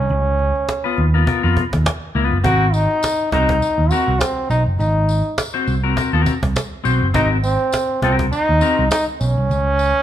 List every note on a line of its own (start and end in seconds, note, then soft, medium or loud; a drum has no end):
0.00 1.14 C#4 medium
0.09 0.51 C#2 loud
0.09 cajon slap soft
0.26 cajon slap soft
0.39 cajon slap soft
0.55 cajon slap soft
0.69 cajon slap medium
0.84 1.05 B3 medium
0.84 1.05 F4 medium
0.84 1.04 B4 medium
0.84 cajon slap soft
0.98 1.24 D#2 medium
0.98 cajon slap soft
1.14 1.25 B3 medium
1.14 1.26 F4 medium
1.14 1.27 A#4 medium
1.14 cajon slap soft
1.27 1.43 B3 medium
1.27 1.42 F4 medium
1.27 1.42 A#4 medium
1.27 muted picked electric bass stroke soft
1.27 cajon bass medium
1.43 1.55 F2 medium
1.43 1.64 B3 medium
1.43 1.63 F4 medium
1.43 1.63 A#4 medium
1.43 cajon slap soft
1.57 cajon bass medium
1.73 1.84 D#2 medium
1.73 cajon bass loud
1.73 cajon slap soft
1.86 cajon slap loud
2.02 cajon slap soft
2.15 2.30 C#2 medium
2.15 2.37 B3 medium
2.15 2.37 F4 medium
2.15 2.38 B4 medium
2.32 2.43 F#1 medium
2.32 cajon slap soft
2.44 2.86 G#1 loud
2.44 2.66 C4 loud
2.44 2.75 F#4 loud
2.44 2.66 F#4 medium
2.44 2.67 A#4 loud
2.44 cajon bass loud
2.44 tambourine soft
2.61 cajon slap soft
2.73 3.31 D#4 medium
2.73 cajon slap soft
2.73 tambourine medium
2.91 cajon slap soft
3.03 cajon slap medium
3.03 tambourine medium
3.19 cajon slap soft
3.32 3.59 C2 medium
3.32 3.55 C4 medium
3.32 3.92 D#4 loud
3.32 3.55 F#4 medium
3.32 3.55 A#4 medium
3.32 cajon bass medium
3.49 cajon bass loud
3.62 muted picked electric bass stroke soft
3.62 tambourine medium
3.78 3.90 D#2 medium
3.90 4.13 C4 medium
3.90 4.22 F#4 medium
3.90 4.14 F#4 medium
3.90 4.14 A#4 medium
3.90 tambourine medium
4.08 4.20 C2 loud
4.08 cajon slap soft
4.20 4.49 C4 medium
4.20 cajon slap loud
4.20 tambourine medium
4.50 4.65 B1 medium
4.50 4.63 D#4 medium
4.50 tambourine medium
4.66 4.78 F#1 medium
4.66 cajon slap soft
4.79 5.21 G#1 loud
4.79 5.34 D#4 medium
4.79 cajon slap soft
4.79 tambourine soft
4.96 cajon slap soft
5.08 cajon slap soft
5.08 tambourine soft
5.25 cajon slap soft
5.38 cajon slap loud
5.38 tambourine medium
5.54 5.75 C4 medium
5.54 5.75 F#4 medium
5.54 5.74 C5 medium
5.54 cajon slap soft
5.67 5.94 C2 medium
5.67 cajon slap soft
5.67 tambourine soft
5.83 5.95 C4 medium
5.83 5.96 F#4 medium
5.83 5.96 A#4 medium
5.83 cajon slap soft
5.96 6.13 C4 medium
5.96 6.13 F#4 medium
5.96 6.12 A#4 medium
5.96 muted picked electric bass stroke soft
5.96 cajon bass loud
5.96 tambourine medium
6.13 6.25 D#2 medium
6.13 6.34 C4 medium
6.13 6.34 F#4 medium
6.13 6.33 A#4 medium
6.26 cajon bass medium
6.26 tambourine medium
6.43 6.55 C2 medium
6.43 cajon bass loud
6.56 cajon slap loud
6.56 tambourine medium
6.84 7.00 B1 medium
6.84 7.07 C4 medium
6.84 7.07 F#4 medium
6.84 7.07 C5 loud
6.84 tambourine medium
7.02 7.14 F#1 medium
7.02 cajon slap soft
7.14 7.56 G#1 loud
7.14 7.36 C4 medium
7.14 7.28 D#4 loud
7.14 7.37 F#4 medium
7.14 7.37 A#4 loud
7.14 cajon bass loud
7.14 tambourine soft
7.31 cajon slap soft
7.44 7.99 C4 medium
7.44 cajon slap soft
7.44 tambourine medium
7.60 cajon slap soft
7.72 cajon slap loud
7.72 tambourine loud
7.89 cajon slap soft
8.02 8.29 C2 loud
8.02 8.16 C4 medium
8.02 8.25 C4 medium
8.02 8.25 F#4 medium
8.02 8.26 A#4 medium
8.02 cajon bass medium
8.19 cajon bass medium
8.32 8.87 D#4 loud
8.32 muted picked electric bass stroke soft
8.32 cajon slap soft
8.32 tambourine medium
8.49 8.61 D#2 medium
8.61 8.84 C4 medium
8.61 8.84 F#4 medium
8.61 8.84 A#4 medium
8.61 tambourine medium
8.78 8.90 C2 loud
8.78 cajon slap soft
8.91 9.04 D#4 loud
8.91 cajon slap loud
8.91 tambourine medium
9.20 9.36 B1 medium
9.20 10.03 C#4 loud
9.20 tambourine medium
9.37 9.49 C2 medium
9.37 cajon slap soft
9.49 9.92 C#2 loud
9.49 cajon slap soft
9.49 tambourine soft
9.66 cajon slap soft
9.79 cajon slap soft
9.79 tambourine medium
9.96 cajon slap soft